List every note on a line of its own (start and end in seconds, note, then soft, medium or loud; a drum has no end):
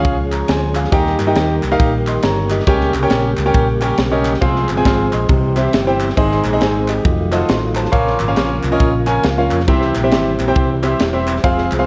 0.00 0.90 F3 medium
0.00 0.90 G#3 medium
0.00 0.15 C#4 medium
0.00 0.90 C#4 medium
0.00 0.15 F4 medium
0.00 0.15 G#4 medium
0.00 0.90 G#4 medium
0.00 0.15 C#5 medium
0.00 0.15 F5 loud
0.05 0.42 C#2 medium
0.05 kick loud
0.05 ride medium
0.32 0.48 C#5 medium
0.32 0.47 A#5 medium
0.32 clap loud
0.32 ride medium
0.48 0.86 D2 medium
0.48 0.75 C5 medium
0.48 0.74 G#5 medium
0.48 snare loud
0.48 ride medium
0.75 1.17 G#4 medium
0.75 1.17 F5 medium
0.75 clap loud
0.75 ride medium
0.85 snare soft
0.91 1.15 D#2 loud
0.91 2.65 D#3 medium
0.91 1.59 D#3 medium
0.91 2.65 G3 medium
0.91 2.65 A#3 medium
0.91 1.16 D#4 medium
0.91 2.65 G4 medium
0.91 1.16 G4 medium
0.91 1.16 A#4 medium
0.91 1.16 D#5 medium
0.91 1.16 G5 loud
0.91 kick loud
0.91 ride medium
1.06 snare soft
1.19 1.33 G2 medium
1.19 clap loud
1.19 ride medium
1.27 1.54 D#4 medium
1.27 1.54 G4 medium
1.27 1.54 A#4 medium
1.27 1.54 D#5 medium
1.27 1.54 G5 medium
1.35 1.59 D#2 medium
1.35 snare loud
1.35 ride medium
1.63 1.77 C2 medium
1.63 clap medium
1.63 ride medium
1.72 1.90 D#4 loud
1.72 1.90 G4 medium
1.72 1.90 A#4 medium
1.72 1.90 D#5 medium
1.72 1.90 F5 loud
1.80 2.17 A#1 medium
1.80 kick loud
1.80 ride medium
2.07 2.23 D#5 medium
2.07 2.23 C6 medium
2.07 clap loud
2.07 ride medium
2.23 2.60 G1 loud
2.23 2.49 C#5 medium
2.23 2.49 A#5 medium
2.23 snare loud
2.23 ride loud
2.50 2.66 G4 medium
2.50 2.92 D#5 medium
2.50 clap loud
2.50 ride medium
2.60 snare soft
2.67 2.90 C#2 loud
2.67 4.40 C#3 medium
2.67 3.34 C#3 medium
2.67 4.40 G3 medium
2.67 4.40 A#3 medium
2.67 2.91 C#4 loud
2.67 4.40 G4 medium
2.67 2.91 G4 loud
2.67 2.91 A#4 medium
2.67 2.91 C#5 medium
2.67 2.91 G5 loud
2.67 kick loud
2.67 ride medium
2.81 snare soft
2.94 3.08 C2 loud
2.94 clap loud
2.94 ride medium
3.03 3.29 C#4 medium
3.03 3.29 G4 medium
3.03 3.29 A#4 medium
3.03 3.29 C#5 medium
3.03 3.29 G5 loud
3.10 3.34 A#1 medium
3.10 snare loud
3.10 ride medium
3.37 3.52 C#2 medium
3.37 clap medium
3.37 ride medium
3.46 3.65 C#4 medium
3.46 3.65 G4 medium
3.46 3.65 A#4 medium
3.46 3.65 C#5 medium
3.46 3.65 G5 loud
3.54 3.92 A#1 medium
3.54 kick loud
3.54 ride medium
3.81 3.96 C#4 medium
3.81 3.96 G4 medium
3.81 3.96 A#4 medium
3.81 3.96 C#5 medium
3.81 3.96 G5 loud
3.81 clap medium
3.81 ride medium
3.98 4.35 B1 medium
3.98 snare loud
3.98 ride medium
4.12 4.32 C#4 medium
4.12 4.32 G4 medium
4.12 4.32 A#4 medium
4.12 4.32 C#5 medium
4.12 4.32 D#5 medium
4.25 clap loud
4.25 ride medium
4.34 snare soft
4.41 4.65 C2 loud
4.41 5.08 C3 medium
4.41 5.28 F3 medium
4.41 5.28 G#3 medium
4.41 4.66 C4 loud
4.41 5.28 C4 medium
4.41 4.66 F4 medium
4.41 4.66 G#4 medium
4.41 5.28 G#4 medium
4.41 4.66 C5 medium
4.41 4.66 F5 loud
4.41 kick loud
4.41 ride medium
4.56 snare soft
4.69 4.83 G1 loud
4.69 clap loud
4.69 ride medium
4.77 5.04 C4 medium
4.77 5.04 F4 medium
4.77 5.04 G#4 medium
4.77 5.04 C5 medium
4.77 4.84 G#5 loud
4.85 5.08 G#1 medium
4.85 5.11 F6 medium
4.85 kick medium
4.85 snare loud
4.85 ride medium
5.13 5.27 A#1 medium
5.13 5.55 D#5 medium
5.13 5.54 C6 medium
5.13 clap medium
5.13 ride medium
5.29 5.67 C2 loud
5.29 5.96 C3 medium
5.29 6.16 E3 medium
5.29 6.16 G3 medium
5.29 6.16 C4 medium
5.29 6.16 G4 medium
5.29 kick loud
5.29 ride medium
5.56 5.71 C4 medium
5.56 5.71 E4 medium
5.56 5.71 G4 medium
5.56 5.71 C5 medium
5.56 5.71 E5 loud
5.56 clap medium
5.56 ride medium
5.73 6.11 G1 medium
5.73 snare loud
5.73 ride medium
5.87 6.07 C4 medium
5.87 6.07 E4 medium
5.87 6.07 G4 medium
5.87 6.07 C5 medium
5.87 6.07 G5 medium
6.00 clap loud
6.00 ride medium
6.10 snare soft
6.17 6.40 G#1 loud
6.17 6.84 G#2 medium
6.17 7.91 D#3 medium
6.17 7.04 G#3 medium
6.17 6.41 C4 medium
6.17 7.04 C4 medium
6.17 6.41 D#4 medium
6.17 6.41 G#4 medium
6.17 7.04 G#4 medium
6.17 6.41 C5 medium
6.17 6.41 D#5 loud
6.17 kick loud
6.17 ride medium
6.31 snare soft
6.45 6.58 A#1 medium
6.45 clap loud
6.45 ride medium
6.53 6.79 C4 medium
6.53 6.80 D#4 medium
6.53 6.61 G#4 medium
6.53 6.60 C5 medium
6.53 6.61 D#5 loud
6.61 6.98 G#1 medium
6.61 6.87 C5 medium
6.61 6.86 G#5 medium
6.61 snare loud
6.61 ride medium
6.88 7.30 G4 medium
6.88 7.30 D#5 medium
6.88 clap medium
6.88 ride medium
7.04 7.42 F1 loud
7.04 7.91 F#3 medium
7.04 7.91 A3 medium
7.04 7.91 F4 medium
7.04 kick loud
7.04 ride medium
7.32 7.47 F4 medium
7.32 7.47 F#4 medium
7.32 7.47 A4 medium
7.32 7.47 C5 medium
7.32 7.47 D#5 medium
7.32 clap loud
7.32 ride medium
7.49 7.86 A1 loud
7.49 7.75 D#5 medium
7.49 7.75 C6 medium
7.49 snare loud
7.49 ride medium
7.75 8.18 C5 medium
7.75 8.17 A5 medium
7.75 clap loud
7.75 ride medium
7.85 snare soft
7.92 8.16 A#1 medium
7.92 8.59 A#2 medium
7.92 9.66 C#3 medium
7.92 9.66 F3 medium
7.92 9.67 A#3 medium
7.92 8.16 C#4 medium
7.92 8.16 F4 medium
7.92 9.66 F4 medium
7.92 8.16 A#4 medium
7.92 8.16 C#5 loud
7.92 8.16 F5 loud
7.92 kick loud
7.92 ride medium
8.07 snare soft
8.20 8.34 G#1 loud
8.20 clap loud
8.20 ride medium
8.28 8.55 C#4 medium
8.28 8.55 F4 medium
8.28 8.55 A#4 medium
8.28 8.55 C#5 medium
8.28 8.55 F5 medium
8.36 8.60 A#1 medium
8.36 snare loud
8.36 ride medium
8.63 8.78 C2 medium
8.63 clap medium
8.63 ride medium
8.72 8.91 C#4 medium
8.72 8.91 F4 medium
8.72 8.91 A#4 medium
8.72 8.91 C#5 medium
8.72 8.91 D#5 loud
8.80 9.17 A#1 medium
8.80 kick loud
8.80 ride medium
9.07 9.22 C#4 medium
9.07 9.22 F4 medium
9.07 9.22 A#4 medium
9.07 9.22 C#5 medium
9.07 9.22 G#5 medium
9.07 9.23 A#5 medium
9.07 clap loud
9.07 ride medium
9.23 9.47 C#2 loud
9.23 9.37 F5 medium
9.23 snare loud
9.23 ride medium
9.38 9.58 C#4 medium
9.38 9.58 F4 medium
9.38 9.58 A#4 medium
9.38 9.58 C#5 medium
9.38 9.58 F5 medium
9.51 9.66 F2 medium
9.51 clap loud
9.51 ride medium
9.60 snare soft
9.67 9.91 C2 loud
9.67 10.35 C3 medium
9.67 11.41 E3 medium
9.67 11.42 G3 medium
9.67 11.86 C4 medium
9.67 9.92 C4 loud
9.67 9.92 E4 medium
9.67 11.42 G4 medium
9.67 9.92 G4 medium
9.67 9.92 C5 medium
9.67 9.92 E5 loud
9.67 kick loud
9.67 ride medium
9.82 snare soft
9.95 10.10 A#1 loud
9.95 clap loud
9.95 ride medium
10.04 10.31 C4 medium
10.04 10.31 E4 medium
10.04 10.31 G4 medium
10.04 10.31 C5 medium
10.04 10.31 E5 loud
10.11 10.36 G#1 medium
10.11 snare loud
10.11 ride medium
10.40 10.54 A#1 medium
10.40 clap medium
10.40 ride medium
10.48 10.67 C4 loud
10.48 10.67 E4 medium
10.48 10.67 G4 medium
10.48 10.67 C5 medium
10.48 10.67 G5 loud
10.55 10.93 C2 loud
10.55 kick loud
10.55 ride medium
10.83 10.98 C4 medium
10.83 10.98 E4 medium
10.83 10.98 G4 medium
10.83 10.98 C5 medium
10.83 10.98 E5 medium
10.83 clap loud
10.83 ride medium
11.00 11.37 E1 medium
11.00 snare loud
11.00 ride medium
11.13 11.34 C4 medium
11.13 11.34 E4 medium
11.13 11.34 G4 medium
11.13 11.33 C5 medium
11.13 11.34 E5 loud
11.28 clap loud
11.28 ride medium
11.36 snare soft
11.44 11.67 F1 medium
11.44 11.86 F3 medium
11.44 11.86 G#3 medium
11.44 11.68 C4 medium
11.44 11.68 F4 medium
11.44 11.68 G#4 medium
11.44 11.86 G#4 medium
11.44 11.68 C5 medium
11.44 11.68 F5 loud
11.44 kick loud
11.44 ride medium
11.58 snare soft
11.72 11.86 C2 loud
11.72 clap loud
11.72 ride medium
11.79 11.86 C4 medium
11.79 11.86 F4 medium
11.79 11.86 G#4 medium
11.79 11.86 C5 medium
11.79 11.86 F5 loud